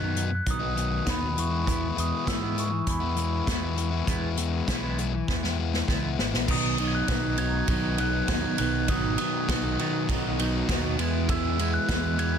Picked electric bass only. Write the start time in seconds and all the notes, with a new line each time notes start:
Already playing: F#2
0.47 B1
1.07 D#2
1.38 E2
1.98 E2
2.28 G#2
2.87 E2
3.48 E2
4.08 E2
4.68 B1
5.29 E2
5.89 C#2
6.19 G#1
6.34 A#1
6.48 B1
7.09 B1
7.68 B1
8.29 D#2
8.59 B1
8.89 G#1
9.48 B1
10.09 B1
10.69 D#2
10.98 E2
11.89 E2